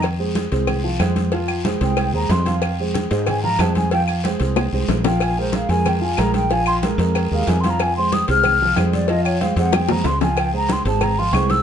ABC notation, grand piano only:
X:1
M:4/4
L:1/8
Q:1/4=186
K:Fm
V:1 name="Grand piano"
z [A,Ac]2 [A,Ac]2 [F,Ff] [A,Ac]2 | [F,Ff]2 [A,Ac] [A,Ac]2 [A,Ac]2 [F,Ff]- | [F,Ff] [A,Ac]2 [A,Ac]2 [F,Ff] [A,Ac]2 | [F,Ff]2 [A,Ac] [A,Ac]2 [A,Ac]2 [F,Ff]- |
[F,Ff] [A,AB]2 [A,AB]2 [F,Ff] [A,AB]2 | [F,Ff]2 [A,AB] [A,AB]2 [A,AB]2 [F,Ff]- | [F,Ff] [A,Ac]2 [A,Ac]2 [F,Ff] [A,Ac]2 | [F,Ff]2 [A,Ac] [A,Ac]2 [A,Ac]2 [F,Ff]- |
[F,Ff] [A,Ac]2 [A,Ac]2 [F,Ff] [A,Ac]2 |]